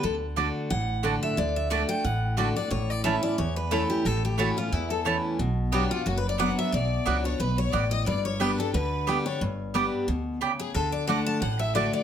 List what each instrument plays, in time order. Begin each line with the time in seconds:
0.03 upright bass D2, steel-string acoustic guitar D3 A4
0.36 steel-string acoustic guitar D3 A3 D4 F#4, mandolin A3 F#4 D5 A5
0.70 upright bass A1, steel-string acoustic guitar A2 F#5
1.03 steel-string acoustic guitar D3 A3 D4 F#4, mandolin A3 F#4 D5 A5
1.23 steel-string acoustic guitar E5
1.37 upright bass D2, steel-string acoustic guitar D3 D5
1.56 steel-string acoustic guitar E5
1.70 steel-string acoustic guitar D3 A3 D4 F#4 F#5, mandolin A3 F#4 D5 A5
1.89 steel-string acoustic guitar G5
2.04 upright bass A1, steel-string acoustic guitar A2 F#5
2.37 steel-string acoustic guitar D3 A3 D4 F#4, mandolin A3 F#4 D5 A5
2.56 steel-string acoustic guitar D4 F#4 D5
2.71 upright bass A1, steel-string acoustic guitar A2 C#5
2.90 steel-string acoustic guitar D5
3.04 steel-string acoustic guitar E3 A3 C#4 E4 E5, mandolin A3 E4 C#5 A5
3.22 steel-string acoustic guitar C#4 E4 D5
3.38 upright bass E2, steel-string acoustic guitar E2 C#5
3.56 steel-string acoustic guitar B4
3.71 steel-string acoustic guitar E3 A3 C#4 E4 A4, mandolin A3 E4 C#5 A5
3.90 steel-string acoustic guitar G4
4.05 upright bass A1, steel-string acoustic guitar A2 A4
4.25 steel-string acoustic guitar G4
4.38 steel-string acoustic guitar E3 A3 C#4 E4 F#4, mandolin A3 E4 C#5 A5
4.57 steel-string acoustic guitar C#4 E4 F4
4.72 upright bass E2, steel-string acoustic guitar E2 E4, fiddle E4
4.90 fiddle A4, steel-string acoustic guitar A4
5.05 steel-string acoustic guitar E3 A3 C#4 E4, mandolin A3 E4 C#5 A5
5.39 upright bass B1, steel-string acoustic guitar B2
5.72 steel-string acoustic guitar F#3 B3 D4 F#4 G4, mandolin B3 F#4 D5 F#5, fiddle G4
5.91 steel-string acoustic guitar D4 F4 F#4, fiddle F4
6.06 upright bass F#1, steel-string acoustic guitar F#2 F#4, fiddle F#4
6.18 steel-string acoustic guitar B4, fiddle B4
6.28 fiddle D5, steel-string acoustic guitar D5
6.38 steel-string acoustic guitar F#3 B3 D4 F#4 F#5, mandolin B3 F#4 D5 F#5, fiddle F#5
6.58 fiddle E5, steel-string acoustic guitar E5
6.72 upright bass B1, steel-string acoustic guitar B2 D5, fiddle D5
7.05 upright bass C#2, steel-string acoustic guitar F#3 B3 D4 F#4, mandolin B3 F#4 D5 F#5
7.24 steel-string acoustic guitar D4 F#4 C#5, fiddle C#5
7.40 upright bass B1, steel-string acoustic guitar B2 B4, fiddle B4
7.58 fiddle C#5, steel-string acoustic guitar C#5
7.72 upright bass A1, steel-string acoustic guitar A2 D5, mandolin B3 F#4 D5 F#5, fiddle D5
7.91 steel-string acoustic guitar D#5, fiddle D#5
8.06 upright bass G1, steel-string acoustic guitar G2 D5, fiddle D5
8.25 fiddle C#5, steel-string acoustic guitar C#5
8.40 steel-string acoustic guitar G3 B3 D4 G4 B4, mandolin B3 G4 D5 G5, fiddle B4
8.58 steel-string acoustic guitar D4 G4 A4, fiddle A4
8.74 upright bass D2, steel-string acoustic guitar D3 B4, fiddle B4
9.07 steel-string acoustic guitar G3 B3 D4 G4, mandolin B3 G4 D5 G5
9.26 steel-string acoustic guitar D4 G4 C#5, fiddle C#5
9.41 upright bass G1, steel-string acoustic guitar G2
9.74 steel-string acoustic guitar G3 B3 D4 G4, mandolin B3 G4 D5 G5
10.08 upright bass D2, steel-string acoustic guitar B2
10.41 steel-string acoustic guitar C#3, mandolin B3 G4 D5 G5
10.59 fiddle G#4, steel-string acoustic guitar G#4
10.74 upright bass D2, steel-string acoustic guitar D3 A4, fiddle A4
10.92 steel-string acoustic guitar D5, fiddle D5
11.07 steel-string acoustic guitar D3 A3 D4 F#4 F#5, mandolin A3 F#4 D5 A5, fiddle F#5
11.26 fiddle A5, steel-string acoustic guitar A5
11.41 upright bass A1, steel-string acoustic guitar A2 F#5, fiddle F#5
11.59 steel-string acoustic guitar E5, fiddle E5
11.75 steel-string acoustic guitar D3 A3 D4 F#4 D5, mandolin A3 F#4 D5 A5, fiddle D5
11.93 fiddle D5, steel-string acoustic guitar D5